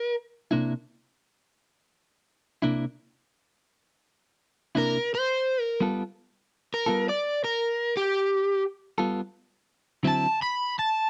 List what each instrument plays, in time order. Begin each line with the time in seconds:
Already playing: overdriven electric guitar A#4
0.51 clean electric guitar C3 A#3 D4 E4
2.62 clean electric guitar C3 A#3 D4 E4
4.75 clean electric guitar C3 A#3 D4 E4, overdriven electric guitar A#4
5.15 overdriven electric guitar C5
5.61 overdriven electric guitar A#4
5.81 clean electric guitar G3 B3 F4 A4
6.74 overdriven electric guitar A#4
6.86 clean electric guitar G3 B3 F4 A4
7.09 overdriven electric guitar D5
7.44 overdriven electric guitar A#4
7.97 overdriven electric guitar G4
8.98 clean electric guitar G3 B3 F4 A4
10.03 clean electric guitar D3 F#3 C4 E4
10.07 overdriven electric guitar A5
10.42 overdriven electric guitar B5
10.79 overdriven electric guitar A5